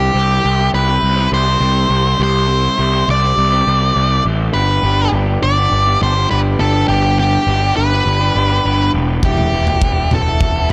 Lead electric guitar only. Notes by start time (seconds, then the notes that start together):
Already playing: G4
0.74 B4
1.34 C5
2.23 C5
3.10 D5
4.53 B4
5.43 D5
6.03 C5
6.31 B4
6.60 A4
6.88 G4
7.19 G4
7.76 B4
9.25 G4
10.14 A4